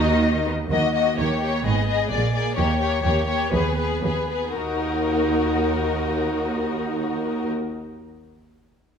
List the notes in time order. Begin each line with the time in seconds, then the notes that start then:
Already playing: D#2 D#3 A#3 D#4 F#4 D#5
0.22 A#3
0.47 B3
0.70 D#2 D#3 A#3 F#4 D#5
0.93 A#3 F#4 D#5
1.17 D#2 D#3 A#3 G4 C#5
1.40 A#3 G4 C#5
1.63 G#1 G#2 B3 G#4 D#5
1.86 B3 G#4 D#5
2.10 A#1 A#2 A#3 G#4 D5
2.34 A#3 G#4 D5
2.56 D#2 A#3 G4 C#5
2.79 A#3 G4 C#5
3.03 D#2 A#3 G4 C#5
3.27 A#3 G4 C#5
3.52 D#2 B3 G#4 B4
3.77 B3 G#4 B4
4.04 D#2 B3 G#4 B4
4.29 B3 G#4 B4
4.57 D#2 D#4 F#4 A#4